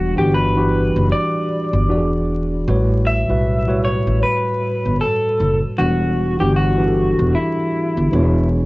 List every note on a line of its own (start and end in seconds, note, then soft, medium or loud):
0.00 0.13 E1 loud
0.00 0.16 E3 medium
0.00 0.10 G3 medium
0.00 0.17 D4 medium
0.00 0.18 F#4 medium
0.16 0.91 G1 medium
0.16 0.50 E3 medium
0.16 0.50 D4 medium
0.16 0.51 F#4 medium
0.16 0.32 G4 medium
0.16 0.51 G4 medium
0.34 1.12 B4 medium
0.55 1.87 E3 medium
0.55 1.88 D4 medium
0.55 1.89 F#4 medium
0.55 1.90 G4 medium
0.96 1.10 F#1 loud
1.12 2.24 D5 medium
1.73 1.90 G1 medium
1.89 2.63 E1 loud
1.89 2.59 E3 medium
1.89 2.59 D4 medium
1.89 2.60 F#4 medium
1.89 1.97 G4 medium
1.89 2.60 D5 medium
1.97 2.63 G#4 medium
2.67 3.25 A1 loud
2.67 3.21 A2 medium
2.67 3.21 G3 medium
2.67 3.21 F#4 medium
2.67 3.22 B4 medium
2.67 3.22 C#5 medium
3.07 3.84 E5 loud
3.28 4.03 B1 medium
3.28 3.62 A2 medium
3.28 3.62 G3 medium
3.28 3.62 F#4 medium
3.28 3.63 B4 medium
3.28 3.63 E5 medium
3.67 5.02 A2 medium
3.67 5.02 G3 medium
3.67 5.02 F#4 medium
3.67 5.03 B4 medium
3.67 5.03 C#5 medium
3.85 4.20 C#5 loud
4.07 4.22 A1 medium
4.23 5.00 B4 loud
4.85 5.00 G1 medium
5.01 5.58 A4 medium
5.40 5.61 F#1 medium
5.78 6.37 E1 loud
5.78 6.32 E3 medium
5.78 6.33 G3 medium
5.78 6.33 D4 medium
5.78 6.40 F#4 medium
5.78 6.33 F#4 medium
6.39 7.14 G1 medium
6.39 6.73 E3 medium
6.39 6.74 D4 medium
6.39 6.74 F#4 medium
6.39 6.56 G4 medium
6.39 6.75 G4 medium
6.56 7.36 F#4 medium
6.78 8.11 E3 medium
6.78 8.12 D4 medium
6.78 8.12 F#4 medium
6.78 6.83 G4 medium
6.87 8.16 A4 medium
7.19 7.34 E1 medium
7.35 8.47 E4 medium
7.97 8.12 G1 medium
8.12 8.66 E1 loud
8.12 8.66 E3 medium
8.12 8.66 D4 medium
8.12 8.66 F#4 medium
8.12 8.66 G#4 medium
8.12 8.66 C#5 medium